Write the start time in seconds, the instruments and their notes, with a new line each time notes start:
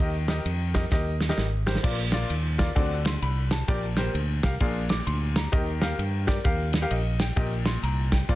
0.00 fingered electric bass D#2, upright piano D#3 G4 A#4 D#5, kick, ride
0.28 upright piano G4 A#4 D#5, snare, ride
0.45 fingered electric bass F2, ride
0.74 upright piano G4 A#4 D#5, kick, snare, ride
0.91 fingered electric bass D#2, upright piano G4 A#4 D#5, kick, snare
1.20 snare
1.29 upright piano G4 A#4 D#5, snare
1.38 fingered electric bass G#1, snare
1.66 upright piano G4 A#4 C5, snare
1.75 snare
1.83 fingered electric bass A#1, upright piano A#2 F4 A#4 D5, kick, crash
2.12 upright piano F4 A#4 D5, snare, ride
2.30 fingered electric bass D#2, ride
2.58 upright piano F4 A#4 D5, kick, snare, ride
2.75 fingered electric bass D2, upright piano D3 C4 D4 F#4 A4 D5, kick, ride
3.05 upright piano C6, snare, ride
3.22 fingered electric bass C2, upright piano B5, ride
3.51 upright piano A5, snare, ride
3.68 fingered electric bass A#1, upright piano A#2 G4 A#4 D5, kick, ride
3.97 upright piano G4 A#4 C5, snare, ride
4.14 fingered electric bass D2, ride
4.43 upright piano G4 A#4 F5, kick, snare, ride
4.60 fingered electric bass A#1, upright piano A#2 D4 F4 G#4 A#4 F5, kick, ride
4.89 upright piano D6, snare, ride
5.07 fingered electric bass D2, upright piano C6, ride
5.36 upright piano A#5, snare, ride
5.52 fingered electric bass D#2, upright piano D#3 G4 A#4 D#5, kick, ride
5.81 upright piano G4 A#4 F5, snare, ride
5.98 fingered electric bass G2, ride
6.27 upright piano G4 A#4 D5, kick, snare, ride
6.44 fingered electric bass D#2, upright piano G4 A#4 F5, kick, ride
6.73 snare, ride
6.82 upright piano G4 A#4 F5
6.91 fingered electric bass A#1, upright piano D#5, ride
7.20 upright piano G5, snare, ride
7.36 fingered electric bass A#1, upright piano A#2 G4 A#4 D#5, kick, ride
7.65 upright piano C6, snare, ride
7.83 fingered electric bass C2, upright piano A#5, ride
8.12 upright piano G5, kick, snare, ride
8.29 fingered electric bass A#1, upright piano A#2 F4 A#4 D5, kick, ride